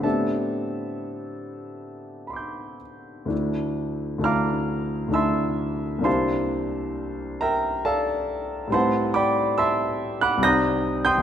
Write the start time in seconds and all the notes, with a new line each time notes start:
0.00 A2 B3 C4 D4 E5 A5
0.05 G4 A4
2.27 B5 C6
2.33 D6 G6
3.26 D2 A3 D4
3.30 E4
4.18 D2 A3 D4
4.23 E4 F5 A#5 D6 F6
5.08 D2 A3 D4
5.13 E4 E5 A5 C6 E6
5.99 C2 A#3 D4
6.03 E4 G4 C5 F5 A5 C6
7.41 A#4 E5 G5 A#5
7.85 A4 D5 F5 A5
8.68 A2 G3 C4
8.72 E4 B4 C5 F#5 A5 C6
9.14 D5 G5 B5 D6
9.58 E5 A5 C6 E6
10.21 F#5 B5 D6 F#6
10.38 C2 G3 C4
10.42 D#4 D5 A#5 D#6 G6 A#6
11.05 G5 C6 D#6 G6
11.18 D#2